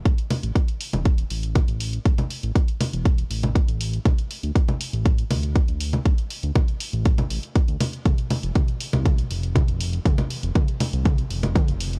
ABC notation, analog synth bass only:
X:1
M:4/4
L:1/16
Q:1/4=120
K:Am
V:1 name="Analog synth bass" clef=bass
A,,, z2 A,,, z3 E,,,2 z A,,,2 z A,,,2 z | A,,, z2 A,,, z3 E,,,2 z A,,,2 z A,,,2 z | D,, z2 D,, z3 A,,,2 z D,,2 z D,,2 z | D,, z2 D,, z3 A,,,2 z A,,, z2 D,, z2 |
F,,, z2 F,,, z3 C,,2 z F,,,2 z F,,,2 z | F,,, z2 F,,, z3 C,,2 z F,,,2 z F,,,2 z |]